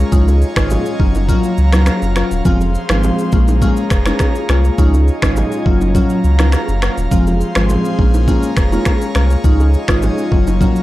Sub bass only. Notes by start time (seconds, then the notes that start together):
0.12 C#2
0.57 G#1
1.00 F#1
1.58 C#2
2.02 F#1
2.31 D#1
2.45 F1
2.90 G#1
3.33 A#1
3.91 F1
4.49 C2
4.78 C#2
5.23 G#1
5.66 F#1
6.24 C#2
6.68 F#1
6.98 D#1
7.11 F1
7.56 G#1
7.99 A#1
8.57 F1
9.15 C2
9.44 C#2
9.89 G#1
10.32 F#1